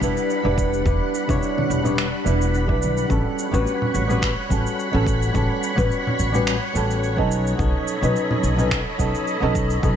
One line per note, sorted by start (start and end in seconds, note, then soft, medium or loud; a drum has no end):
0.00 0.14 E1 medium
0.00 7.27 G3 medium
0.00 0.41 G3 medium
0.00 0.41 B3 medium
0.00 3.07 D4 medium
0.00 0.41 D4 medium
0.00 0.42 E4 medium
0.00 0.42 B4 medium
0.00 3.07 F#5 medium
0.00 3.07 B5 medium
0.00 kick medium
0.00 cabasa medium
0.17 cabasa soft
0.30 cabasa soft
0.43 0.82 E1 medium
0.43 0.82 G3 medium
0.43 0.82 B3 medium
0.43 0.83 D4 medium
0.43 0.83 E4 medium
0.43 0.83 B4 loud
0.58 kick loud
0.58 cabasa medium
0.74 cabasa soft
0.84 0.98 E1 medium
0.84 1.25 G3 medium
0.84 1.25 B3 medium
0.84 1.25 D4 medium
0.84 1.26 E4 medium
0.84 1.26 B4 medium
0.84 kick loud
0.84 cabasa soft
1.15 cabasa medium
1.27 1.40 E1 medium
1.27 1.81 G3 medium
1.27 1.81 B3 medium
1.27 1.81 D4 medium
1.27 1.82 E4 medium
1.27 1.82 C#5 loud
1.27 kick loud
1.27 cabasa soft
1.43 cabasa soft
1.58 high conga medium
1.58 low conga medium
1.70 2.09 E1 medium
1.70 cabasa medium
1.83 2.05 G3 medium
1.83 2.06 B3 medium
1.83 2.06 D4 medium
1.83 2.06 E4 medium
1.83 2.07 C#5 medium
1.83 low conga medium
1.83 cabasa soft
1.98 finger snap medium
1.98 cabasa soft
2.24 2.70 E1 medium
2.24 2.65 G3 medium
2.24 2.27 B3 medium
2.24 2.65 D4 medium
2.24 2.66 E4 medium
2.24 2.66 B4 medium
2.24 cabasa medium
2.42 cabasa soft
2.55 cabasa soft
2.67 3.06 B1 medium
2.67 3.06 G3 medium
2.67 2.70 B3 medium
2.67 3.07 D4 medium
2.67 3.07 E4 medium
2.67 3.08 B4 loud
2.67 kick medium
2.82 high conga medium
2.82 cabasa medium
2.98 cabasa soft
3.08 3.23 A1 medium
3.08 3.49 G3 medium
3.08 3.49 B3 medium
3.08 3.50 C#4 medium
3.08 3.50 F#4 medium
3.08 3.51 A4 medium
3.08 9.96 C#5 medium
3.08 7.27 F#5 medium
3.08 7.27 B5 medium
3.08 kick loud
3.08 cabasa soft
3.39 cabasa medium
3.51 3.64 A1 medium
3.51 4.05 G3 medium
3.51 4.05 B3 medium
3.51 4.06 C#4 medium
3.51 4.06 F#4 medium
3.51 4.07 B4 loud
3.51 cabasa soft
3.67 cabasa soft
3.82 low conga medium
3.95 4.33 A1 medium
3.95 cabasa medium
4.07 4.29 G3 medium
4.07 4.29 B3 medium
4.07 4.30 C#4 medium
4.07 4.30 F#4 medium
4.07 4.31 B4 medium
4.07 low conga medium
4.07 cabasa soft
4.22 finger snap medium
4.22 kick medium
4.22 cabasa soft
4.49 4.63 A1 medium
4.49 4.89 G3 medium
4.49 4.90 B3 medium
4.49 4.90 C#4 medium
4.49 4.91 F#4 medium
4.49 4.91 A4 medium
4.49 kick medium
4.49 cabasa medium
4.67 cabasa soft
4.80 cabasa soft
4.91 5.31 A1 medium
4.91 4.94 G3 medium
4.91 5.31 B3 medium
4.91 5.31 C#4 medium
4.91 5.32 F#4 medium
4.91 5.32 A4 loud
5.07 kick loud
5.07 cabasa medium
5.22 cabasa soft
5.32 5.47 A1 medium
5.32 5.73 G3 medium
5.32 5.73 B3 medium
5.32 5.74 C#4 medium
5.32 5.74 F#4 medium
5.32 5.75 A4 medium
5.32 kick loud
5.32 cabasa soft
5.63 cabasa medium
5.75 5.88 A1 medium
5.75 6.29 G3 medium
5.75 6.30 B3 medium
5.75 6.30 C#4 medium
5.75 6.30 F#4 medium
5.75 6.31 B4 loud
5.75 kick loud
5.75 cabasa soft
5.91 cabasa soft
6.07 low conga medium
6.19 6.58 A1 medium
6.19 cabasa medium
6.32 6.54 G3 medium
6.32 6.54 B3 medium
6.32 6.55 C#4 medium
6.32 6.55 F#4 medium
6.32 6.55 B4 medium
6.32 low conga medium
6.32 cabasa soft
6.47 finger snap medium
6.47 cabasa soft
6.73 7.18 A1 medium
6.73 7.13 G3 medium
6.73 7.14 B3 medium
6.73 7.14 C#4 medium
6.73 7.15 F#4 medium
6.73 7.15 A4 medium
6.73 cabasa medium
6.91 cabasa soft
7.04 cabasa soft
7.16 7.55 B1 medium
7.16 7.55 F#3 medium
7.16 7.55 B3 medium
7.16 7.56 C#4 medium
7.16 7.56 D#4 medium
7.16 7.56 A4 loud
7.16 kick medium
7.31 9.96 A4 medium
7.31 9.96 D#5 medium
7.31 9.96 B5 medium
7.31 cabasa medium
7.47 cabasa soft
7.58 7.71 B1 medium
7.58 7.98 F#3 medium
7.58 7.98 B3 medium
7.58 7.99 C#4 medium
7.58 7.99 D#4 medium
7.58 7.99 A4 medium
7.58 kick loud
7.58 cabasa soft
7.88 cabasa medium
8.01 8.13 B1 medium
8.01 8.54 F#3 medium
8.01 8.55 B3 medium
8.01 8.55 C#4 medium
8.01 8.55 D#4 medium
8.01 8.55 B4 loud
8.01 cabasa soft
8.16 cabasa soft
8.31 low conga loud
8.43 8.82 B1 medium
8.43 cabasa medium
8.56 8.78 F#3 medium
8.56 8.78 B3 medium
8.56 8.79 C#4 medium
8.56 8.79 D#4 medium
8.56 8.79 B4 medium
8.56 low conga medium
8.56 cabasa soft
8.71 finger snap medium
8.71 kick medium
8.71 cabasa soft
8.97 9.11 B1 medium
8.97 9.38 F#3 medium
8.97 9.38 B3 medium
8.97 9.39 C#4 medium
8.97 9.39 D#4 medium
8.97 9.39 A4 medium
8.97 kick soft
8.97 cabasa medium
9.15 cabasa soft
9.28 cabasa soft
9.40 9.80 B1 medium
9.40 9.79 F#3 medium
9.40 9.79 B3 medium
9.40 9.80 C#4 medium
9.40 9.80 D#4 medium
9.40 9.81 A4 loud
9.55 kick medium
9.55 cabasa medium
9.70 cabasa soft
9.82 9.96 B1 medium
9.82 9.96 F#3 medium
9.82 9.96 B3 medium
9.82 9.96 C#4 medium
9.82 9.96 D#4 medium
9.82 9.96 A4 medium
9.82 kick loud
9.82 cabasa soft